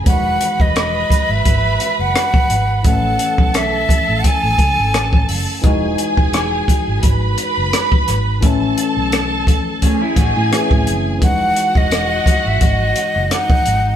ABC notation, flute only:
X:1
M:4/4
L:1/16
Q:"Swing 16ths" 1/4=86
K:E
V:1 name="Flute"
f3 d4 e4 f4- f | f4 e4 g6 z2 | z16 | z16 |
f3 d4 e d4 f4 |]